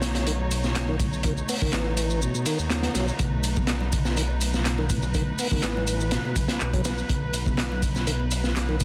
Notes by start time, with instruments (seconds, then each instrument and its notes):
Already playing: detuned saw bass B1, string section A3 D#4 C#5
0.02 snare, closed hi-hat, ride, shaker
0.15 snare, closed hi-hat, shaker
0.27 tonewheel organ D#3, closed hi-hat, shaker
0.51 closed hi-hat, ride, shaker
0.64 snare, shaker
0.75 snare, clap, closed hi-hat, shaker
0.89 tonewheel organ D#3
1.00 tonewheel organ A2, kick, closed hi-hat, ride, shaker
1.13 shaker
1.23 tonewheel organ D#3, kick, closed hi-hat, shaker
1.37 shaker
1.49 tonewheel organ B3, open hi-hat, ride, shaker
1.62 detuned saw bass A1, tonewheel organ D#3, kick, shaker
1.73 detuned saw bass A1, tonewheel organ E3, snare, clap, closed hi-hat, shaker
1.97 closed hi-hat, ride, shaker
2.10 shaker
2.22 tonewheel organ B2, swell, shaker
2.35 tonewheel organ B2, shaker
2.46 tonewheel organ D#3, closed hi-hat, ride, shaker
2.59 detuned saw bass D#2, shaker
2.70 snare, clap, closed hi-hat, shaker
2.83 tonewheel organ B3, snare, closed hi-hat
2.95 detuned saw bass B1, tonewheel organ F#3, snare, closed hi-hat, ride, shaker
3.08 shaker
3.19 detuned saw bass B1, string section B4, kick, closed hi-hat, shaker
3.44 closed hi-hat, ride, shaker
3.56 kick, high conga, low conga, shaker
3.67 tonewheel organ B2, snare, clap, closed hi-hat, shaker
3.80 low conga
3.93 kick, closed hi-hat, ride, shaker
4.05 snare, high bongo, shaker
4.17 tonewheel organ D#3, closed hi-hat, shaker
4.30 high conga
4.41 closed hi-hat, ride, shaker
4.54 snare, shaker
4.65 snare, clap, closed hi-hat, shaker
4.78 tonewheel organ D#3, low conga
4.90 tonewheel organ A2, kick, closed hi-hat, ride, high conga, shaker
5.02 high bongo, shaker
5.14 tonewheel organ D#3, kick, closed hi-hat, shaker
5.39 tonewheel organ B3, open hi-hat, ride, shaker
5.51 detuned saw bass A1, tonewheel organ D#3, kick, high conga, low conga, shaker
5.62 detuned saw bass A1, tonewheel organ E3, snare, clap, closed hi-hat, shaker
5.76 high bongo, low conga
5.87 closed hi-hat, ride, shaker
6.00 high bongo, shaker
6.11 tonewheel organ B2, snare, closed hi-hat, shaker
6.25 tonewheel organ B2, high conga
6.36 detuned saw bass B1, kick, closed hi-hat, ride, high bongo, shaker
6.48 detuned saw bass B1, snare, closed hi-hat, shaker
6.60 detuned saw bass B1, clap, shaker
6.73 tonewheel organ F#3, kick, closed hi-hat, high bongo, low conga
6.85 tonewheel organ E3, snare, closed hi-hat, ride, high conga, shaker
6.98 shaker
7.09 detuned saw bass B1, kick, closed hi-hat, shaker
7.33 closed hi-hat, ride, shaker
7.46 kick, high conga, low conga, shaker
7.58 tonewheel organ B2, snare, clap, closed hi-hat, shaker
7.72 low conga
7.82 kick, closed hi-hat, ride, shaker
7.95 snare, high bongo, shaker
8.07 tonewheel organ D#3, closed hi-hat, shaker
8.20 high conga
8.31 closed hi-hat, ride, shaker
8.44 snare, shaker
8.56 snare, clap, closed hi-hat, shaker
8.68 tonewheel organ D#3, low conga
8.80 tonewheel organ A2, kick, closed hi-hat, ride, high conga, shaker